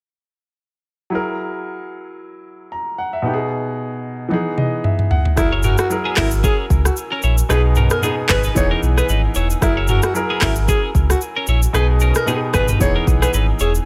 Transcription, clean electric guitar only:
5.52 E4 C#5
5.64 C#4 A#4
6.05 B3 G#4
6.18 C#4 A#4
6.44 C#4 G#4
7.12 C#4 A#4
7.24 E4 C#5
7.50 D#4 B4
7.77 C#4 A#4
8.03 B3 G#4
8.30 B3 G#4
8.45 D#4 B4
8.71 C#4 A#4
8.98 B3 G#4
9.09 D#4 B4
9.36 E4 C#5
9.77 E4 C#5
9.89 C#4 A#4
10.30 B3 G#4
10.42 C#4 A#4
10.69 C#4 G#4
11.37 C#4 A#4
11.49 E4 C#5
11.75 D#4 B4
12.02 C#4 A#4
12.28 B3 G#4
12.54 B3 G#4
12.69 D#4 B4
12.96 C#4 A#4
13.22 B3 G#4
13.34 D#4 B4
13.61 E4 C#5

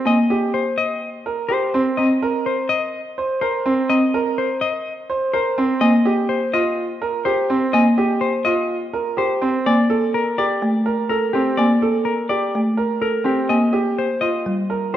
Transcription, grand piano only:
Already playing: C4
0.30 G4
1.26 A#4
1.50 G4
1.74 C4
2.22 A#4
3.18 C5
3.42 A#4
3.66 C4
4.14 A#4
5.10 C5
5.34 A#4
5.58 C4
6.06 G4
6.54 F4
7.02 A#4
7.26 G4
7.50 C4
7.98 G4
8.46 F4
8.94 A#4
9.17 G4
9.42 C4
9.89 A4
10.38 G4
10.86 A#4
11.10 A4
11.34 C4
11.82 A4
12.30 G4
12.78 A#4
13.01 A4
13.24 C4
13.73 G4
14.22 F4
14.70 A#4
14.94 G4

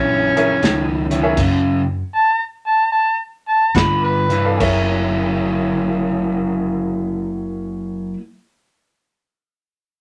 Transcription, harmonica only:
Already playing: C#4
2.16 A5
2.67 A5
2.92 A5
3.48 A5
3.76 F#5 B5
4.04 B4

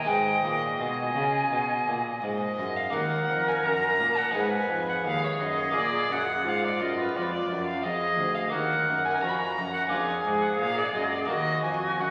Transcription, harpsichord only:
0.04 G#3 D#4 B4
0.09 G#2
0.45 A#2
0.81 B2
1.16 C#3
1.52 B2
1.88 A#2
2.23 G#2
2.59 F#2
2.90 A#3 D#4 A#4
2.95 D#2
3.30 F2
3.66 F#2
4.00 A#2
4.31 B3 D#4 G#4
4.35 G#2
4.70 F2
5.05 D#2
5.41 F#2
5.71 A#3 F4 G#4
5.76 A#2
6.10 F#2
6.46 G#2
6.80 F#2
7.15 F2
7.50 F#2
7.84 F2
8.19 D2
8.49 A#3 D#4 F#4
8.54 D#2
8.89 F#2
9.23 F2
9.58 F#2
9.89 A#3 D4 F4
9.93 F2
10.28 G#2
10.62 A#2
10.95 F#2
11.26 A#3 D#4 F#4
11.30 D#2
11.64 F2
11.99 F#2

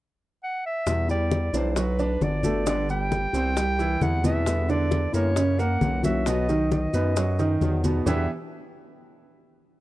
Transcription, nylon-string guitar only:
0.86 B2 E3 G3 B3 E4
1.08 G3 B3 E4
1.53 E3 G3 B3 E4
1.76 muted nylon-string guitar stroke
2.21 D3 B3 D4 F#4
2.44 D3 B3 D4 F#4
2.66 D3 G3 B3 G4
2.90 G3 B3
3.33 G3 B3 G4
3.55 muted nylon-string guitar stroke
4.01 E3 G3 C4 E4
4.24 E3 G3 C4 E4
4.46 B2 D3 G3 B3 E4
4.69 G3 B3 E4
5.13 D3 G3 B3 E4
5.36 muted nylon-string guitar stroke
5.81 E3 A#3 C#4 F#4
6.03 E3 A#3 C#4 F#4
6.26 B2 F#3 B3 D#4 F#4
6.49 B3 D#4 F#4
6.93 F#3 B3 D#4 F#4
7.16 muted nylon-string guitar stroke
7.61 F#3 B3 D#4 F#4
7.84 F#3 B3 D#4 F#4
8.06 E2 B2 D3 G3 B3 E4

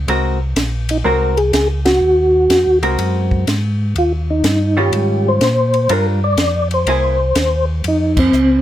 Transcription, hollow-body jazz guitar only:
0.08 G#3 C4 F#4 A#4
1.04 G#3 C4 F#4 A#4
2.83 G#3 C4 F#4 A#4
4.77 D#3 G3 C#4 F4
5.90 G3 D4 F4 A#4
6.88 A#3 E4 G#4

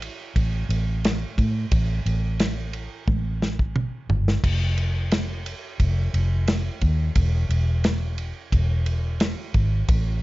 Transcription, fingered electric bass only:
0.36 A1
0.69 A1
1.38 A2
1.72 A1
2.06 A1
3.08 A1
4.09 G1
4.44 F1
5.80 F1
6.14 F1
6.82 D#2
7.16 E1
7.49 E1
8.52 E1
9.55 G#1
9.88 A1

